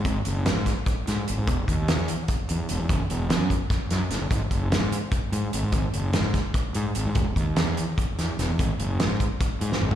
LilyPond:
<<
  \new Staff \with { instrumentName = "Fingered electric bass" } { \clef bass \time 7/8 \key fis \mixolydian \tempo 4 = 148 gis,,16 r16 fis,,8 gis,8 r4 gis,16 r16 gis,,16 gis,16 | e,,16 r16 dis,8 e,8 r4 e,16 r16 e,,16 e,16 | fis,,16 r16 e,,8 fis,8 r4 fis,16 r16 fis,,16 fis,,16 | gis,,16 r16 fis,,8 gis,8 r4 gis,16 r16 gis,,16 gis,16 |
gis,,16 r16 fis,,8 gis,8 r4 gis,16 r16 gis,,16 gis,16 | e,,16 r16 dis,8 e,8 r4 e,16 r16 e,,16 e,16 | gis,,16 r16 fis,,8 gis,8 r4 gis,16 r16 gis,,16 gis,16 | }
  \new DrumStaff \with { instrumentName = "Drums" } \drummode { \time 7/8 <hh bd>8 hh8 <hh sn>8 <hh bd sn>8 <hh bd>8 <hh sn>8 hh8 | <hh bd>8 <hh bd>8 <hh sn>8 hh8 <hh bd>8 hh8 hh8 | <hh bd>8 hh8 <hh sn>8 <hh bd>8 <hh bd sn>8 <hh sn>8 <hh sn>8 | <hh bd>8 <hh bd>8 <hh sn>8 hh8 <hh bd>8 hh8 hh8 |
<hh bd>8 hh8 <hh sn>8 <hh bd sn>8 <hh bd>8 hh8 hh8 | <hh bd>8 <hh bd>8 <hh sn>8 hh8 <hh bd>8 <hh sn>8 <hh sn>8 | <hh bd>8 hh8 <hh sn>8 <hh bd>8 <hh bd>8 hh16 sn16 toml16 tomfh16 | }
>>